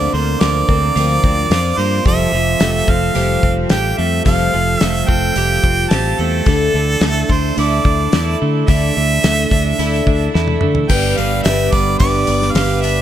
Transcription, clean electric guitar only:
0.00 0.12 D3 medium
0.00 0.40 A#3 medium
0.00 0.44 C4 medium
0.00 0.95 F4 medium
0.14 1.51 D3 medium
0.41 1.77 A#3 medium
0.69 1.23 C4 medium
0.96 1.51 F4 medium
1.24 2.88 C4 medium
1.52 3.15 F4 medium
1.79 2.06 A#3 medium
2.06 2.32 F3 medium
2.34 3.71 F3 medium
2.61 3.98 A3 medium
2.88 3.43 C4 medium
3.15 3.70 G4 medium
3.44 4.82 C4 medium
3.71 5.09 G4 medium
3.99 4.81 A3 medium
4.26 4.52 F3 medium
4.53 5.92 F3 medium
4.81 6.20 A3 medium
5.09 5.63 C4 medium
5.37 5.92 G4 medium
5.64 6.47 C4 medium
5.93 6.48 G4 medium
6.21 7.02 A3 medium
6.48 6.74 D3 medium
6.75 8.13 D3 medium
7.03 8.41 A3 medium
7.31 7.86 D4 medium
7.59 8.12 E4 medium
7.86 9.24 D4 medium
8.13 9.52 E4 medium
8.42 9.23 A3 medium
8.69 8.95 D3 medium
8.97 10.35 D3 medium
9.24 10.61 A3 medium
9.51 10.06 D4 medium
9.79 10.33 E4 medium
10.07 10.90 D4 medium
10.34 10.90 E4 medium
10.62 10.90 A3 medium
10.89 12.28 G2 medium
11.18 11.99 G3 medium
11.45 12.83 D4 medium
11.73 12.27 B3 medium
12.01 13.02 G3 medium
12.28 13.02 B3 medium
12.57 13.02 G4 medium
12.84 13.02 D4 medium

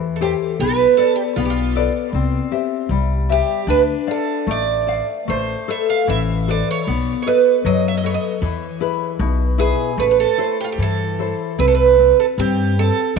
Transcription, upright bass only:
0.00 0.32 E2 medium
0.60 0.85 B1 medium
1.37 1.86 B1 medium
2.13 2.38 C2 medium
2.89 3.40 C2 medium
3.67 3.93 D2 medium
4.47 5.00 A1 medium
5.28 5.54 A1 medium
6.08 6.60 A1 medium
6.87 7.13 B1 medium
7.65 8.15 F#2 medium
8.42 8.67 E2 medium
9.19 9.70 B1 medium
9.98 10.24 A1 medium
10.78 11.30 G2 medium
11.59 12.11 C2 medium
12.38 12.88 G2 medium

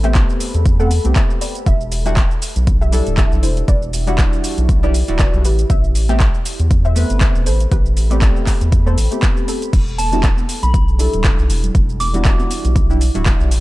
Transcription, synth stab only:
0.03 0.76 A3 medium
0.03 0.76 B3 medium
0.03 0.76 C4 medium
0.03 0.77 G4 loud
0.79 0.90 A3 medium
0.79 0.90 B3 medium
0.79 0.90 C4 medium
0.79 0.91 A4 medium
1.04 1.65 A3 medium
1.04 1.65 B3 medium
1.04 1.65 C4 medium
1.04 1.66 G4 medium
2.05 2.16 G3 loud
2.05 2.16 D4 medium
2.05 2.16 E4 medium
2.05 2.17 F#4 loud
2.92 4.04 G3 medium
2.92 4.04 D4 medium
2.92 4.04 E4 medium
2.92 4.05 A4 medium
4.07 4.79 G3 medium
4.07 4.80 D4 medium
4.07 4.80 E4 medium
4.07 4.80 F#4 loud
4.83 4.94 G3 medium
4.83 4.94 D4 medium
4.83 4.94 E4 medium
4.83 4.94 G4 medium
5.08 5.43 G3 medium
5.08 5.43 D4 medium
5.08 5.43 E4 medium
5.08 5.44 F#4 medium
6.09 6.20 A3 loud
6.09 6.20 B3 medium
6.09 6.20 C4 medium
6.09 6.20 G4 loud
6.95 8.07 A3 medium
6.95 8.07 B3 medium
6.95 8.08 C4 medium
6.95 8.08 B4 medium
8.10 8.83 A3 medium
8.10 8.83 B3 medium
8.10 8.83 C4 medium
8.10 8.84 G4 medium
8.86 8.97 A3 medium
8.86 8.97 B3 medium
8.86 8.97 C4 medium
8.86 8.97 A4 medium
9.11 9.71 A3 medium
9.11 9.72 B3 medium
9.11 9.72 C4 medium
9.11 9.72 G4 medium
10.12 10.23 G3 loud
10.12 10.23 D4 medium
10.12 10.23 E4 medium
10.12 10.23 F#4 loud
10.98 12.10 G3 medium
10.98 12.11 D4 medium
10.98 12.11 E4 medium
10.98 12.11 A4 medium
12.13 12.86 G3 medium
12.13 12.86 D4 medium
12.13 12.87 E4 medium
12.13 12.87 F#4 loud
12.90 13.00 G3 medium
12.90 13.00 D4 medium
12.90 13.01 E4 medium
12.90 13.01 G4 medium
13.15 13.50 G3 medium
13.15 13.50 D4 medium
13.15 13.50 E4 medium
13.15 13.50 F#4 medium

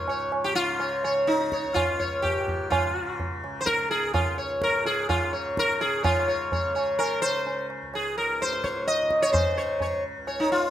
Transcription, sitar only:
0.09 0.31 C#5 soft
0.44 0.55 G4 medium
0.55 1.12 F4 loud
0.80 1.02 C#5 soft
1.04 1.27 C#5 soft
1.27 1.77 D#4 medium
1.53 1.75 C#5 soft
1.74 2.22 F4 medium
2.00 2.22 C#5 soft
2.22 2.70 G4 medium
2.70 3.39 F4 medium
3.61 3.67 C5 medium
3.66 3.90 A#4 loud
3.91 4.13 G#4 medium
4.14 4.36 F4 medium
4.38 4.60 C#5 soft
4.63 4.86 A#4 medium
4.86 5.09 G#4 medium
5.09 5.31 F4 medium
5.33 5.55 C#5 soft
5.59 5.81 A#4 medium
5.81 6.04 G#4 medium
6.03 6.71 F4 medium
6.03 6.26 C#5 soft
6.28 6.50 C#5 soft
6.53 6.74 C#5 soft
6.75 6.97 C#5 soft
6.99 7.21 A#4 medium
7.22 7.66 C5 medium
7.95 8.17 G#4 medium
8.18 8.41 A#4 medium
8.42 8.85 C5 medium
8.64 8.85 C#5 soft
8.88 9.22 D#5 medium
9.22 9.32 C#5 medium
9.33 10.00 C5 medium
9.57 9.79 C#5 soft
9.82 10.03 C#5 soft
10.28 10.49 C#5 soft
10.40 10.52 D#4 medium
10.52 10.70 F4 medium

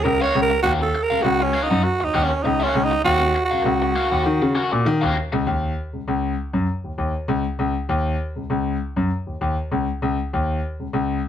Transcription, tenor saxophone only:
0.03 0.24 A#4 loud
0.22 0.41 C#5 loud
0.42 0.62 A#4 loud
0.63 0.72 F#4 loud
0.82 1.04 A4 medium
1.03 1.24 A#4 loud
1.22 1.45 F#4 loud
1.43 1.65 C#4 medium
1.63 1.85 D#4 medium
1.84 2.06 F#4 medium
2.05 2.25 D#4 medium
2.24 2.44 C#4 medium
2.43 2.65 D#4 medium
2.64 2.86 C#4 medium
2.84 3.04 D#4 loud
3.05 3.42 F#4 loud
3.45 4.92 F#4 medium

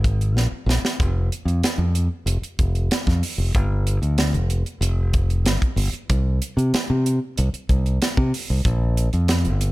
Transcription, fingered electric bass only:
0.00 0.35 G#1 medium
0.35 0.50 A#1 medium
0.52 muted fingered electric bass stroke soft
0.66 0.81 A#1 medium
0.82 muted fingered electric bass stroke soft
1.00 1.28 F1 medium
1.45 1.61 F2 medium
1.63 muted fingered electric bass stroke soft
1.78 2.07 F2 medium
2.26 2.41 F1 medium
2.42 muted fingered electric bass stroke soft
2.59 2.88 F1 medium
3.07 3.21 F2 medium
3.38 3.53 F1 medium
3.55 3.98 G1 medium
4.02 4.35 D2 medium
4.33 4.62 F1 medium
4.81 5.45 F1 medium
5.45 5.60 G1 medium
5.76 5.91 G1 medium
5.93 muted fingered electric bass stroke soft
6.10 6.39 C2 medium
6.57 6.71 C3 medium
6.73 muted fingered electric bass stroke soft
6.90 7.18 C3 medium
7.38 7.52 C2 medium
7.53 muted fingered electric bass stroke soft
7.69 7.98 C2 medium
8.17 8.31 C3 medium
8.50 8.64 C2 medium
8.65 9.08 A#1 medium
9.13 9.47 F2 medium
9.45 9.72 G1 medium

